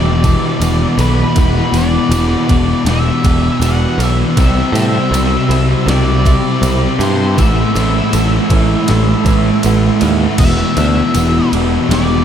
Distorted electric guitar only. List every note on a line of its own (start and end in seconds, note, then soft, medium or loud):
0.00 0.59 E2 medium
0.00 0.61 B2 medium
0.00 0.63 E3 loud
0.60 1.34 E2 medium
0.60 1.35 B2 medium
0.60 1.37 E3 medium
1.35 2.10 E2 loud
1.35 1.75 B2 loud
1.35 1.73 E3 loud
1.73 2.12 B2 medium
1.73 2.14 E3 medium
2.11 2.85 E2 medium
2.11 2.87 B2 medium
2.11 2.88 E3 medium
2.86 3.61 E2 loud
2.86 3.62 B2 loud
2.86 3.64 E3 loud
3.62 4.35 E2 medium
3.62 4.36 B2 medium
3.62 4.39 E3 medium
4.38 5.12 C3 loud
4.38 4.77 G3 loud
4.38 4.75 C4 loud
4.76 5.14 G3 medium
4.76 5.15 C4 medium
5.13 5.86 C3 medium
5.13 5.87 G3 medium
5.13 5.89 C4 medium
5.87 6.61 C3 loud
5.87 6.62 G3 loud
5.87 6.63 C4 loud
6.62 7.35 C3 medium
6.62 7.36 G3 medium
6.62 7.37 C4 medium
7.37 8.10 A2 loud
7.37 7.76 E3 loud
7.37 7.73 A3 loud
7.74 8.11 E3 medium
7.74 8.13 A3 medium
8.11 8.85 A2 medium
8.11 8.87 E3 medium
8.11 8.88 A3 medium
8.86 9.62 A2 loud
8.86 9.63 E3 loud
8.86 9.65 A3 loud
9.63 10.37 A2 medium
9.63 10.38 E3 medium
9.63 10.38 A3 medium
10.38 11.13 E2 loud
10.38 10.77 B2 loud
10.38 10.75 E3 loud
10.75 11.14 B2 medium
10.75 11.16 E3 medium
11.13 11.87 E2 medium
11.13 11.88 B2 medium
11.13 11.91 E3 medium
11.88 12.24 E2 medium
11.88 12.24 B2 loud
11.88 12.24 E3 loud